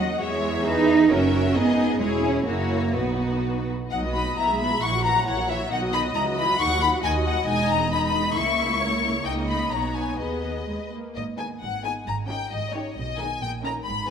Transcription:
Already playing: D#2 F#4 D#5 F#5
0.00 F#3
0.21 E2 G#3 G#4 C#5 E5
0.65 D#4 B4
1.10 F#1 C#4 F#4 A#4 E5
1.55 G#1 B3 D#4 G#4 D#5
2.00 E1 G#3 E4 G#4 C#5
2.23 C#4
2.46 F#1 A#3 E4 F#4 C#5
2.95 B1 B3 D#4 F#4 B4
3.91 B1 B2 F#3 D#4 D#5 F#5
4.05 B3 F#4
4.14 F#3 D#4 B5
4.26 B3 F#4
4.37 B1 B2 B3 E4 E5 A#5
4.49 G#3 G#4
4.60 B3 E4 B5
4.72 G#3 G#4
4.82 A#1 A#2 E3 E4 F#5 C#6
4.94 F#3 F#4
5.05 E3 E4 A#5
5.16 F#3 F#4
5.27 A#1 A#2 E3 E4 C#5 F#5
5.39 F#3 F#4
5.49 E3 E4 E5
5.61 F#3 F#4
5.71 B1 B2 D#3 D#4 D#5 F#5
5.83 F#3 F#4
5.93 D#3 D#4 B5
6.05 F#3 F#4
6.15 C#2 E3 E4 A#5
6.26 F#3 F#4
6.37 E3 E4 B5
6.48 F#3 F#4
6.59 D#2 D#3 D#4 F#5 C#6
6.70 F#3 F#4
6.81 D#3 D#4 B5
6.92 F#3 F#4
7.04 D#2 D#3 D#4 D#5 G#5
7.15 F#3 F#4
7.26 D#3 D#4 F#5
7.36 F#3 F#4
7.48 E1 E2 G#3 D#4 G#5
7.70 A#5
7.92 G#3 D#4 B5
7.99 A#5
8.05 B5
8.36 C#2 C#3 A#3 E4 E5 C#6
8.81 C#5
9.25 C#2 C#3 A#3 D#4 D#5 G5
9.49 B5
9.71 B1 B2 B3 D#4 C#5 A#5
9.96 G#5
10.19 D#2 B3 G#4 B4 D#5
10.68 D#2 G#3
10.93 A#3
11.16 G#1 G#2 D#5
11.39 D#3 B3 D#4 G#4 G#5
11.62 G#1 G#2 F#5
11.84 D#3 B3 D#4 G#4 G#5
12.07 G#1 G#2 A#5
12.29 D#3 C#4 D#4 G4 G5
12.52 G#1 G#2 D#5
12.74 D#3 C#4 D#4 G4 C#5
12.96 B1 B2 D#5
13.19 D#3 B3 D#4 G#4 G#5
13.42 A#1 A#2 G5
13.65 D#3 C#4 D#4 A#4 A#5
13.87 G#1 G#2 B5

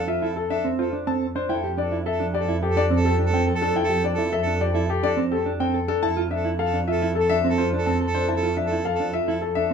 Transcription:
Already playing: F2
0.08 F4 E5
0.19 E4 A4
0.36 A4
0.48 D4 A4 E5
0.65 C4
0.77 F4 A4 C5
0.93 D4
1.07 C4 A4 A5
1.35 D4 C5
1.49 F2 E4 A4 G5
1.64 G4
1.77 D4 A4 D5
1.92 E4
2.06 A4 E5
2.20 D4
2.34 G4 A4 D5
2.48 E4
2.62 G4 A4
2.67 A4
2.77 D4 D5
2.91 C4
2.96 A4
3.05 G4 A4
3.19 D4
3.25 A4
3.33 C4 G5
3.47 A4
3.55 A4
3.61 D4 A4
3.76 E4 G5
3.84 A4
3.90 G4
4.04 D4 D5
4.13 A4
4.18 E4
4.32 A4 E5
4.42 A4
4.46 D4
4.61 G4 D5
4.71 E4 A4
4.89 G4 A4
5.01 D4 A4 D5
5.17 C4
5.30 G4 A4
5.46 D4
5.59 C4 A4 G5
5.74 A4
5.88 D4 A4
6.02 F2 E4 A4 A5
6.17 F4
6.31 D4 A4 E5
6.45 E4
6.59 A4 F5
6.73 D4
6.88 F4 A4 E5
7.02 E4
7.15 A4
7.19 A4
7.29 D4 E5
7.44 C4
7.49 A4
7.58 F4 C5
7.73 D4
7.78 A4
7.86 C4 A5
8.01 A4
8.07 A4
8.15 D4 C5
8.28 E4 A5
8.37 A4
8.43 F4
8.57 D4 E5
8.66 A4
8.72 E4
8.85 A4 F5
8.95 A4
9.00 D4
9.13 F4 E5
9.25 E4 A4
9.41 A4
9.54 D4 A4 E5

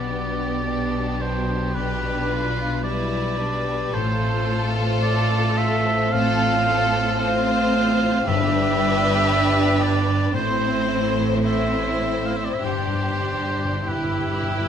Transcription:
Already playing: B1 B2 G3 B3 G4 D5
0.10 B3 D4
0.39 G4
0.67 B3 D4 D5
0.94 D6
1.21 C5 D5
1.49 G4
1.74 B2 D4 G4 B4
2.02 G3
2.29 D4 F4
2.56 G4
2.84 G3 E4 B4 D5
3.12 D6
3.38 D4 D5
3.68 G4
3.94 A1 A2 A3 F4 A4 C5
4.22 C4
4.48 F4
4.75 C5
5.02 A3 D5 F5
5.30 A5
5.57 E5 F5
5.85 C5
6.12 A2 C4 F4 A4 F5
6.40 C4
6.67 F4 A4
6.94 C5
7.20 C4 F4 C5 F5
7.47 A5
7.73 F5
8.00 C5
8.26 G1 G2 D4 G4 B4 E5
8.52 D4
8.78 G4
9.03 D5
9.28 G5
9.53 B5
9.80 D5 G5
10.06 D5
10.33 A1 A2 C4 E4 C5
10.60 C4
10.88 E4
11.15 C5
11.44 C4 E4 C5 E5
11.72 C6
12.01 E5
12.26 F5
12.31 C5
12.36 E5
12.45 D5
12.54 E5
12.62 G1 G2 D4 G4 C5
12.71 G2
12.78 G2
12.87 G2
12.93 G2 G3
13.02 G2
13.19 G2
13.25 G2 G4
13.34 G2
13.41 G2
13.49 G2
13.54 G2 D5
13.65 G2
13.72 G2
13.81 G2
13.85 G2 E4 G4 B4 G5
13.96 G2
14.04 G2
14.11 G2
14.16 G2 D6
14.27 G2
14.35 G2
14.43 G2
14.47 G2 G5
14.58 G2

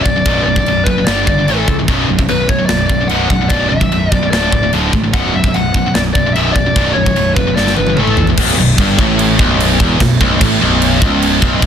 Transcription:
0.03 B0 B1 F#2 D5, kick
0.16 B1 F#2
0.25 B0 B1 F#2 B2, kick, china
0.43 B0 B1 F#2 D5
0.56 B1 F#2, kick
0.65 B0 B1 F#2, china
0.84 F#1 B1 F#2 B4, kick
0.98 B1 F#2
1.04 G1 G2 D5, snare, china
1.09 D3 G3
1.27 G1 G2 D3 D5, kick
1.39 G2 D3
1.47 A1 A2 E3 A4, china
1.51 A3
1.68 C#2 A2 E3, kick
1.79 A2 E3
1.88 B0 B1 F#2 B2, kick, china
2.08 B0 B1 F#2
2.18 B1 F#2, kick
2.28 B0 B1 F#2 B4, china
2.49 B1 F#2 C#5, kick
2.59 B1 F#2
2.66 B0 B1 F#2 D5, snare, china
2.87 B0 B1 F#2 D5, kick
3.01 B1 F#2
3.08 B0 B1 F#2 B2 F#5, china
3.29 B0 B1 F#2 F#5, kick
3.41 B1 F#2
3.49 B0 B1 F#2 B2 D5, kick, china
3.69 B0 B1 F#2 E5
3.81 B1 F#2, kick
3.91 B0 B1 F#2, china
4.12 B0 B1 F#2 D5, kick
4.23 B1 F#2
4.31 D1 D2 A2 D3 D5, snare, china
4.52 D1 D2 A2, kick
4.63 D2 A2
4.73 D1 D2 A2 D3, china
4.93 A1 D2 A2, kick
5.04 D2 A2
5.13 B0 B1 F#2 B2 F#5, kick, china
5.34 B0 B1 F#2 E5
5.44 B1 F#2, kick
5.54 B0 B1 F#2 F#5, china
5.74 B1 F#2, kick
5.86 B1 F#2
5.94 B0 B1 F#2 D5, snare, china
6.14 B0 B1 F#2 D5, kick
6.27 B1 F#2
6.34 B0 B1 F#2 B2 E5, china
6.53 B0 F#2 D5, kick
6.57 B1
6.66 B1 F#2
6.76 B0 B1 F#2 B2, kick, china
6.93 B0 B1 F#2 C#5
7.06 B1 F#2, kick
7.16 B0 B1 F#2, china
7.34 F#1 B1 F#2 B4, kick
7.47 B1 F#2
7.55 G1 G2 D3 G3 D5, snare
7.67 snare
7.76 G1 G2 D3 B4, high tom
7.87 G2 D3, high tom
7.95 A1 A4, mid tom
7.99 A2 E3 A3
8.07 mid tom
8.17 A#1 A2 E3, floor tom
8.27 A2 E3, floor tom
8.37 B0 B1, kick, crash
8.57 B0 B1
8.78 G1 G2, kick, crash
8.98 A1 A2, kick
9.19 crash
9.39 B0 B1, kick
9.60 crash
9.80 E1 E2, kick
10.00 B0 B1, kick, snare, crash
10.21 B0 B1, kick
10.41 A1 A2, kick, crash
10.61 B0 B1
10.82 crash
11.02 C#1 C#2, kick
11.22 crash
11.42 B0 B1, kick
11.62 B0 B1, kick, crash

